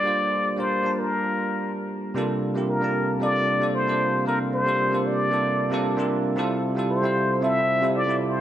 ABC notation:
X:1
M:4/4
L:1/16
Q:1/4=114
K:Cmix
V:1 name="Muted trumpet"
d4 c3 B6 z3 | z4 B4 d4 c4 | B2 c4 d6 z4 | z4 c4 e4 d2 c2 |]
V:2 name="Tine electric piano"
[G,B,DFc]3 z [G,B,DFB]2 [G,B,DFa]6 z4 | [C,G,B,DFA]2 z [C,G,B,DFG]2 [C,G,B,DFa]2 z [C,G,B,DFA]2 z [C,G,B,DFA]2 [C,G,B,DFc]2 z | [C,G,B,DFA]2 z [C,G,B,DFA]2 [C,G,B,DFA]2 z [C,G,B,DFA]2 z [C,G,B,DFA]2 [C,G,B,DFG]2 z | [C,G,CEFA]2 z [C,G,CEFA]2 [C,G,CEFc]2 z [C,G,CEFA]2 z [C,G,CEFA]2 [C,G,CEFG]2 z |]